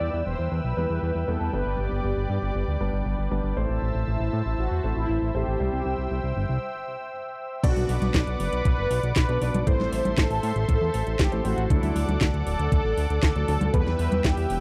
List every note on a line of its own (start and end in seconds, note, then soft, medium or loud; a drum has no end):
0.00 0.10 E2 loud
0.00 0.74 G3 medium
0.00 0.74 B3 medium
0.00 0.74 E4 medium
0.00 0.74 B4 medium
0.00 3.53 B4 medium
0.00 0.23 D5 loud
0.00 1.49 E5 medium
0.00 3.53 G5 medium
0.00 1.51 E6 medium
0.14 0.23 E2 medium
0.26 0.35 E1 medium
0.26 0.52 C5 loud
0.39 0.48 E2 medium
0.52 0.61 E2 medium
0.52 1.30 B4 loud
0.64 0.74 B1 medium
0.77 0.86 E2 medium
0.77 1.25 G3 medium
0.77 1.25 B3 medium
0.77 1.25 E4 medium
0.77 1.25 B4 medium
0.90 0.99 E2 medium
1.03 1.12 E2 loud
1.15 1.24 E2 medium
1.28 1.37 E2 medium
1.28 1.50 G3 medium
1.28 1.50 B3 medium
1.28 1.50 E4 medium
1.28 1.52 A4 medium
1.28 1.50 B4 medium
1.41 1.50 E2 medium
1.53 1.63 G1 loud
1.53 2.77 G3 medium
1.53 2.77 B3 medium
1.53 2.77 D4 medium
1.53 2.77 B4 loud
1.53 1.80 B4 loud
1.53 3.55 D5 medium
1.53 3.55 D6 medium
1.66 1.75 G1 medium
1.79 1.88 G1 medium
1.79 2.03 G4 medium
1.92 2.01 G1 medium
2.04 2.13 G1 loud
2.04 3.27 G4 medium
2.17 2.26 G1 medium
2.30 2.39 G2 medium
2.42 2.52 G1 medium
2.55 2.64 G1 medium
2.68 2.77 D2 medium
2.80 2.90 G1 medium
2.80 3.28 G3 medium
2.80 3.28 B3 medium
2.80 3.28 D4 medium
2.80 3.28 B4 medium
2.93 3.02 G1 medium
3.06 3.15 G1 medium
3.19 3.28 G1 medium
3.31 3.41 G1 medium
3.31 3.54 G3 medium
3.31 3.54 B3 medium
3.31 3.54 D4 medium
3.31 3.54 B4 medium
3.44 3.53 G1 medium
3.57 3.66 A1 loud
3.57 4.81 A3 medium
3.57 4.81 C4 medium
3.57 4.81 E4 medium
3.57 7.60 C5 medium
3.57 4.81 C5 loud
3.57 7.60 E5 medium
3.57 5.58 A5 medium
3.57 5.58 E6 medium
3.69 3.79 A1 medium
3.82 3.91 A1 medium
3.95 4.04 A1 medium
4.08 4.17 A1 loud
4.08 4.60 E4 medium
4.20 4.30 A1 medium
4.33 4.42 A2 medium
4.46 4.55 A1 medium
4.59 4.68 A1 medium
4.59 4.98 F#4 loud
4.71 4.80 E2 medium
4.84 4.93 A1 medium
4.84 5.32 A3 medium
4.84 5.32 C4 medium
4.84 5.32 E4 medium
4.84 5.32 C5 medium
4.97 5.06 A1 medium
4.97 5.36 E4 loud
5.09 5.19 A1 loud
5.22 5.31 A1 medium
5.35 5.44 A1 medium
5.35 5.57 A3 medium
5.35 5.57 C4 medium
5.35 5.57 E4 medium
5.35 6.58 G4 loud
5.35 5.57 C5 medium
5.47 5.57 A1 medium
5.60 5.69 C2 medium
5.60 6.62 G3 medium
5.60 6.62 C4 medium
5.60 6.62 E4 medium
5.60 6.62 C5 loud
5.60 7.62 G5 medium
5.60 7.62 E6 medium
5.73 5.82 C2 medium
5.86 5.95 C2 medium
5.98 6.07 C2 medium
6.11 6.20 C2 medium
6.24 6.33 C2 medium
6.36 6.46 G1 medium
6.49 6.58 C2 medium
7.63 7.73 B1 loud
7.63 8.88 B3 loud
7.63 8.88 D4 medium
7.63 8.11 F#4 loud
7.63 8.88 F#4 medium
7.63 9.65 B4 medium
7.63 9.65 D5 medium
7.63 8.88 D5 loud
7.63 9.65 F#5 medium
7.63 9.65 D6 medium
7.63 kick loud
7.63 closed hi-hat medium
7.63 crash loud
7.76 7.85 B1 medium
7.76 open hi-hat medium
7.76 high conga medium
7.89 7.98 B1 medium
7.89 open hi-hat loud
8.02 8.11 B1 medium
8.02 closed hi-hat medium
8.02 high conga medium
8.14 8.24 B1 loud
8.14 kick loud
8.14 snare loud
8.14 clap loud
8.14 closed hi-hat medium
8.27 8.36 B1 medium
8.27 closed hi-hat soft
8.40 8.49 F#1 loud
8.40 9.15 B4 loud
8.40 open hi-hat loud
8.53 8.62 B1 medium
8.53 closed hi-hat medium
8.65 8.74 B1 loud
8.65 kick loud
8.65 closed hi-hat medium
8.78 8.87 F#1 medium
8.91 9.00 B1 medium
8.91 open hi-hat loud
9.03 9.13 B1 medium
9.03 closed hi-hat medium
9.16 9.25 B1 loud
9.16 9.63 B4 loud
9.16 kick loud
9.16 snare loud
9.16 clap loud
9.16 closed hi-hat medium
9.29 9.38 B1 medium
9.29 9.38 B3 medium
9.29 9.38 D4 medium
9.29 9.38 F#4 medium
9.29 9.38 D5 medium
9.29 closed hi-hat soft
9.41 9.51 B1 loud
9.41 9.64 B3 medium
9.41 9.64 D4 medium
9.41 9.64 F#4 medium
9.41 9.64 D5 medium
9.41 open hi-hat loud
9.54 9.63 B1 medium
9.54 closed hi-hat medium
9.54 high conga medium
9.67 9.76 A1 loud
9.67 10.91 A3 loud
9.67 10.91 C4 medium
9.67 10.91 E4 medium
9.67 13.70 A4 medium
9.67 10.91 C5 loud
9.67 10.19 C5 loud
9.67 11.68 C5 medium
9.67 11.68 E5 medium
9.67 11.68 C6 medium
9.67 kick loud
9.67 closed hi-hat medium
9.79 9.89 A1 medium
9.79 snare soft
9.79 high conga medium
9.92 10.02 A1 medium
9.92 open hi-hat loud
10.05 10.14 A1 medium
10.05 closed hi-hat medium
10.05 high conga medium
10.18 10.27 A1 loud
10.18 10.67 A4 loud
10.18 kick loud
10.18 snare loud
10.18 clap loud
10.18 closed hi-hat medium
10.30 10.40 A1 medium
10.30 open hi-hat medium
10.43 10.52 A2 medium
10.43 open hi-hat loud
10.56 10.65 A1 medium
10.56 closed hi-hat medium
10.69 10.78 A1 loud
10.69 11.21 A4 loud
10.69 kick loud
10.69 closed hi-hat medium
10.81 10.90 E2 medium
10.94 11.03 A1 medium
10.94 open hi-hat loud
11.07 11.16 A1 medium
11.07 closed hi-hat medium
11.19 11.29 A1 loud
11.19 11.46 G4 loud
11.19 kick loud
11.19 snare loud
11.19 clap loud
11.19 closed hi-hat medium
11.32 11.41 A1 medium
11.32 11.42 A3 medium
11.32 11.42 C4 medium
11.32 11.42 E4 medium
11.32 11.42 C5 medium
11.32 closed hi-hat soft
11.45 11.54 A1 loud
11.45 11.67 A3 medium
11.45 11.67 C4 medium
11.45 11.67 E4 medium
11.45 11.71 F#4 medium
11.45 11.67 C5 medium
11.45 open hi-hat loud
11.58 11.67 A1 medium
11.58 closed hi-hat medium
11.70 11.79 D2 loud
11.70 12.94 F#3 loud
11.70 12.94 A3 medium
11.70 12.94 D4 medium
11.70 12.18 E4 medium
11.70 12.94 A4 loud
11.70 13.72 D5 medium
11.70 13.72 F#5 medium
11.70 13.72 D6 medium
11.70 kick loud
11.70 closed hi-hat medium
11.83 11.92 D2 medium
11.83 open hi-hat medium
11.83 high conga medium
11.96 12.05 D2 medium
11.96 open hi-hat loud
12.08 12.18 D2 medium
12.08 closed hi-hat soft
12.08 high conga medium
12.21 12.30 D2 loud
12.21 kick loud
12.21 snare loud
12.21 clap loud
12.21 closed hi-hat medium
12.34 12.43 D2 medium
12.34 closed hi-hat soft
12.47 12.56 D1 loud
12.47 13.22 A4 loud
12.47 open hi-hat loud
12.59 12.68 D2 medium
12.59 closed hi-hat medium
12.72 12.81 D2 medium
12.72 kick loud
12.72 closed hi-hat medium
12.85 12.94 A1 medium
12.97 13.07 D2 medium
12.97 open hi-hat loud
13.10 13.19 D2 medium
13.10 closed hi-hat medium
13.23 13.32 D2 loud
13.23 13.75 A4 loud
13.23 kick loud
13.23 snare loud
13.23 clap loud
13.23 closed hi-hat medium
13.35 13.45 D2 medium
13.35 13.45 F#3 medium
13.35 13.45 A3 medium
13.35 13.45 D4 medium
13.35 13.45 A4 medium
13.35 closed hi-hat soft
13.48 13.57 D2 loud
13.48 13.71 F#3 medium
13.48 13.71 A3 medium
13.48 13.71 D4 medium
13.48 13.71 A4 medium
13.48 open hi-hat loud
13.61 13.70 D2 medium
13.61 closed hi-hat medium
13.61 high conga medium
13.74 13.83 E2 loud
13.74 14.60 G3 loud
13.74 14.60 B3 medium
13.74 14.60 E4 medium
13.74 14.60 B4 loud
13.74 14.60 B4 medium
13.74 14.26 B4 loud
13.74 14.60 E5 medium
13.74 14.60 G5 medium
13.74 14.60 E6 medium
13.74 kick loud
13.74 closed hi-hat medium
13.86 13.96 E2 medium
13.86 snare soft
13.86 high conga medium
13.99 14.08 E2 medium
13.99 open hi-hat loud
14.12 14.21 E2 medium
14.12 closed hi-hat soft
14.12 high conga medium
14.24 14.34 E2 loud
14.24 14.60 G4 loud
14.24 kick loud
14.24 snare loud
14.24 clap loud
14.24 closed hi-hat medium
14.37 14.46 E2 medium
14.37 open hi-hat medium
14.50 14.59 E1 medium
14.50 open hi-hat loud